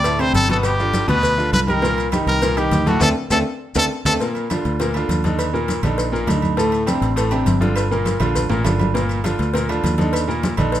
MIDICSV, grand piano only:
0, 0, Header, 1, 2, 480
1, 0, Start_track
1, 0, Key_signature, -2, "minor"
1, 0, Tempo, 296589
1, 1041, Time_signature, 4, 2, 24, 8
1, 17479, End_track
2, 0, Start_track
2, 0, Title_t, "Grand piano"
2, 0, Program_c, 0, 0
2, 69, Note_on_c, 0, 45, 78
2, 74, Note_on_c, 0, 57, 78
2, 78, Note_on_c, 0, 69, 79
2, 270, Note_off_c, 0, 45, 0
2, 274, Note_off_c, 0, 57, 0
2, 276, Note_off_c, 0, 69, 0
2, 309, Note_on_c, 0, 48, 81
2, 313, Note_on_c, 0, 60, 80
2, 321, Note_on_c, 0, 62, 77
2, 707, Note_off_c, 0, 48, 0
2, 710, Note_off_c, 0, 60, 0
2, 714, Note_off_c, 0, 62, 0
2, 788, Note_on_c, 0, 47, 93
2, 795, Note_on_c, 0, 59, 91
2, 802, Note_on_c, 0, 71, 89
2, 1187, Note_off_c, 0, 47, 0
2, 1191, Note_off_c, 0, 59, 0
2, 1195, Note_off_c, 0, 71, 0
2, 1286, Note_on_c, 0, 62, 77
2, 1288, Note_on_c, 0, 50, 71
2, 1291, Note_on_c, 0, 65, 76
2, 1678, Note_off_c, 0, 62, 0
2, 1679, Note_off_c, 0, 50, 0
2, 1680, Note_off_c, 0, 65, 0
2, 1742, Note_on_c, 0, 47, 98
2, 1746, Note_on_c, 0, 71, 96
2, 1749, Note_on_c, 0, 59, 99
2, 2144, Note_off_c, 0, 47, 0
2, 2146, Note_off_c, 0, 71, 0
2, 2148, Note_off_c, 0, 59, 0
2, 2227, Note_on_c, 0, 50, 76
2, 2227, Note_on_c, 0, 62, 74
2, 2233, Note_on_c, 0, 65, 82
2, 2627, Note_off_c, 0, 50, 0
2, 2627, Note_off_c, 0, 62, 0
2, 2630, Note_off_c, 0, 65, 0
2, 2704, Note_on_c, 0, 51, 79
2, 2710, Note_on_c, 0, 63, 80
2, 2713, Note_on_c, 0, 67, 81
2, 2908, Note_off_c, 0, 51, 0
2, 2912, Note_off_c, 0, 63, 0
2, 2914, Note_off_c, 0, 67, 0
2, 2954, Note_on_c, 0, 46, 91
2, 2956, Note_on_c, 0, 58, 79
2, 2959, Note_on_c, 0, 70, 83
2, 3351, Note_off_c, 0, 46, 0
2, 3352, Note_off_c, 0, 58, 0
2, 3354, Note_off_c, 0, 70, 0
2, 3445, Note_on_c, 0, 51, 78
2, 3447, Note_on_c, 0, 63, 76
2, 3450, Note_on_c, 0, 67, 75
2, 3837, Note_off_c, 0, 51, 0
2, 3839, Note_off_c, 0, 63, 0
2, 3840, Note_off_c, 0, 67, 0
2, 3922, Note_on_c, 0, 46, 87
2, 3924, Note_on_c, 0, 58, 88
2, 3930, Note_on_c, 0, 70, 78
2, 4119, Note_off_c, 0, 46, 0
2, 4120, Note_off_c, 0, 58, 0
2, 4124, Note_off_c, 0, 70, 0
2, 4151, Note_on_c, 0, 51, 81
2, 4160, Note_on_c, 0, 63, 80
2, 4167, Note_on_c, 0, 67, 81
2, 4549, Note_off_c, 0, 51, 0
2, 4555, Note_off_c, 0, 63, 0
2, 4559, Note_off_c, 0, 67, 0
2, 4634, Note_on_c, 0, 45, 94
2, 4638, Note_on_c, 0, 57, 95
2, 4638, Note_on_c, 0, 69, 94
2, 4835, Note_off_c, 0, 45, 0
2, 4837, Note_off_c, 0, 57, 0
2, 4837, Note_off_c, 0, 69, 0
2, 4863, Note_on_c, 0, 57, 102
2, 4866, Note_on_c, 0, 62, 106
2, 4869, Note_on_c, 0, 60, 98
2, 5025, Note_off_c, 0, 57, 0
2, 5027, Note_off_c, 0, 62, 0
2, 5028, Note_off_c, 0, 60, 0
2, 5347, Note_on_c, 0, 60, 101
2, 5352, Note_on_c, 0, 62, 98
2, 5353, Note_on_c, 0, 57, 108
2, 5507, Note_off_c, 0, 60, 0
2, 5510, Note_off_c, 0, 57, 0
2, 5510, Note_off_c, 0, 62, 0
2, 6077, Note_on_c, 0, 57, 100
2, 6079, Note_on_c, 0, 60, 96
2, 6079, Note_on_c, 0, 62, 104
2, 6233, Note_off_c, 0, 57, 0
2, 6235, Note_off_c, 0, 60, 0
2, 6235, Note_off_c, 0, 62, 0
2, 6566, Note_on_c, 0, 60, 97
2, 6567, Note_on_c, 0, 62, 110
2, 6570, Note_on_c, 0, 57, 103
2, 6719, Note_off_c, 0, 60, 0
2, 6719, Note_off_c, 0, 62, 0
2, 6721, Note_off_c, 0, 57, 0
2, 6809, Note_on_c, 0, 46, 80
2, 6815, Note_on_c, 0, 58, 89
2, 6820, Note_on_c, 0, 70, 79
2, 7201, Note_off_c, 0, 46, 0
2, 7204, Note_off_c, 0, 58, 0
2, 7207, Note_off_c, 0, 70, 0
2, 7296, Note_on_c, 0, 50, 76
2, 7300, Note_on_c, 0, 62, 71
2, 7301, Note_on_c, 0, 65, 78
2, 7685, Note_off_c, 0, 50, 0
2, 7687, Note_off_c, 0, 62, 0
2, 7688, Note_off_c, 0, 65, 0
2, 7769, Note_on_c, 0, 46, 85
2, 7777, Note_on_c, 0, 58, 84
2, 7780, Note_on_c, 0, 70, 85
2, 7964, Note_off_c, 0, 46, 0
2, 7969, Note_off_c, 0, 58, 0
2, 7970, Note_off_c, 0, 70, 0
2, 8018, Note_on_c, 0, 50, 79
2, 8026, Note_on_c, 0, 62, 81
2, 8030, Note_on_c, 0, 65, 83
2, 8406, Note_off_c, 0, 50, 0
2, 8411, Note_off_c, 0, 62, 0
2, 8413, Note_off_c, 0, 65, 0
2, 8490, Note_on_c, 0, 50, 83
2, 8491, Note_on_c, 0, 62, 86
2, 8499, Note_on_c, 0, 63, 79
2, 8881, Note_off_c, 0, 50, 0
2, 8882, Note_off_c, 0, 62, 0
2, 8886, Note_off_c, 0, 63, 0
2, 8957, Note_on_c, 0, 46, 86
2, 8965, Note_on_c, 0, 58, 82
2, 8968, Note_on_c, 0, 70, 87
2, 9353, Note_off_c, 0, 46, 0
2, 9358, Note_off_c, 0, 58, 0
2, 9360, Note_off_c, 0, 70, 0
2, 9444, Note_on_c, 0, 50, 79
2, 9452, Note_on_c, 0, 62, 83
2, 9462, Note_on_c, 0, 63, 78
2, 9838, Note_off_c, 0, 50, 0
2, 9842, Note_off_c, 0, 62, 0
2, 9848, Note_off_c, 0, 63, 0
2, 9908, Note_on_c, 0, 46, 91
2, 9917, Note_on_c, 0, 58, 87
2, 9921, Note_on_c, 0, 70, 88
2, 10111, Note_off_c, 0, 46, 0
2, 10117, Note_off_c, 0, 58, 0
2, 10119, Note_off_c, 0, 70, 0
2, 10148, Note_on_c, 0, 62, 82
2, 10150, Note_on_c, 0, 50, 70
2, 10153, Note_on_c, 0, 63, 75
2, 10548, Note_off_c, 0, 62, 0
2, 10550, Note_off_c, 0, 50, 0
2, 10551, Note_off_c, 0, 63, 0
2, 10632, Note_on_c, 0, 45, 90
2, 10636, Note_on_c, 0, 57, 89
2, 10646, Note_on_c, 0, 69, 87
2, 11031, Note_off_c, 0, 45, 0
2, 11033, Note_off_c, 0, 57, 0
2, 11038, Note_off_c, 0, 69, 0
2, 11110, Note_on_c, 0, 48, 77
2, 11111, Note_on_c, 0, 62, 83
2, 11112, Note_on_c, 0, 60, 82
2, 11509, Note_off_c, 0, 48, 0
2, 11510, Note_off_c, 0, 60, 0
2, 11510, Note_off_c, 0, 62, 0
2, 11589, Note_on_c, 0, 45, 88
2, 11591, Note_on_c, 0, 57, 83
2, 11603, Note_on_c, 0, 69, 85
2, 11792, Note_off_c, 0, 45, 0
2, 11793, Note_off_c, 0, 57, 0
2, 11800, Note_off_c, 0, 69, 0
2, 11833, Note_on_c, 0, 48, 81
2, 11837, Note_on_c, 0, 60, 82
2, 11839, Note_on_c, 0, 62, 78
2, 12231, Note_off_c, 0, 48, 0
2, 12233, Note_off_c, 0, 60, 0
2, 12234, Note_off_c, 0, 62, 0
2, 12310, Note_on_c, 0, 62, 84
2, 12315, Note_on_c, 0, 65, 82
2, 12316, Note_on_c, 0, 50, 85
2, 12709, Note_off_c, 0, 62, 0
2, 12712, Note_off_c, 0, 50, 0
2, 12712, Note_off_c, 0, 65, 0
2, 12804, Note_on_c, 0, 46, 86
2, 12806, Note_on_c, 0, 58, 88
2, 12812, Note_on_c, 0, 70, 85
2, 13197, Note_off_c, 0, 46, 0
2, 13199, Note_off_c, 0, 58, 0
2, 13202, Note_off_c, 0, 70, 0
2, 13271, Note_on_c, 0, 50, 87
2, 13274, Note_on_c, 0, 62, 77
2, 13276, Note_on_c, 0, 65, 83
2, 13669, Note_off_c, 0, 50, 0
2, 13671, Note_off_c, 0, 62, 0
2, 13673, Note_off_c, 0, 65, 0
2, 13751, Note_on_c, 0, 46, 91
2, 13753, Note_on_c, 0, 58, 93
2, 13753, Note_on_c, 0, 70, 88
2, 13953, Note_off_c, 0, 46, 0
2, 13954, Note_off_c, 0, 58, 0
2, 13954, Note_off_c, 0, 70, 0
2, 13989, Note_on_c, 0, 50, 73
2, 13999, Note_on_c, 0, 62, 76
2, 13999, Note_on_c, 0, 65, 73
2, 14389, Note_off_c, 0, 50, 0
2, 14395, Note_off_c, 0, 62, 0
2, 14395, Note_off_c, 0, 65, 0
2, 14471, Note_on_c, 0, 58, 90
2, 14475, Note_on_c, 0, 46, 83
2, 14479, Note_on_c, 0, 70, 83
2, 14869, Note_off_c, 0, 58, 0
2, 14872, Note_off_c, 0, 46, 0
2, 14874, Note_off_c, 0, 70, 0
2, 14949, Note_on_c, 0, 50, 77
2, 14955, Note_on_c, 0, 62, 75
2, 14955, Note_on_c, 0, 65, 82
2, 15349, Note_off_c, 0, 50, 0
2, 15352, Note_off_c, 0, 62, 0
2, 15352, Note_off_c, 0, 65, 0
2, 15439, Note_on_c, 0, 46, 83
2, 15441, Note_on_c, 0, 58, 82
2, 15448, Note_on_c, 0, 70, 81
2, 15638, Note_off_c, 0, 46, 0
2, 15639, Note_off_c, 0, 58, 0
2, 15643, Note_off_c, 0, 70, 0
2, 15677, Note_on_c, 0, 50, 75
2, 15690, Note_on_c, 0, 62, 80
2, 15690, Note_on_c, 0, 65, 83
2, 16073, Note_off_c, 0, 50, 0
2, 16081, Note_off_c, 0, 62, 0
2, 16081, Note_off_c, 0, 65, 0
2, 16156, Note_on_c, 0, 62, 82
2, 16158, Note_on_c, 0, 50, 81
2, 16162, Note_on_c, 0, 63, 84
2, 16553, Note_off_c, 0, 50, 0
2, 16553, Note_off_c, 0, 62, 0
2, 16556, Note_off_c, 0, 63, 0
2, 16631, Note_on_c, 0, 46, 88
2, 16637, Note_on_c, 0, 58, 81
2, 16644, Note_on_c, 0, 70, 86
2, 17029, Note_off_c, 0, 46, 0
2, 17033, Note_off_c, 0, 58, 0
2, 17037, Note_off_c, 0, 70, 0
2, 17116, Note_on_c, 0, 50, 86
2, 17118, Note_on_c, 0, 62, 85
2, 17129, Note_on_c, 0, 63, 84
2, 17479, Note_off_c, 0, 50, 0
2, 17479, Note_off_c, 0, 62, 0
2, 17479, Note_off_c, 0, 63, 0
2, 17479, End_track
0, 0, End_of_file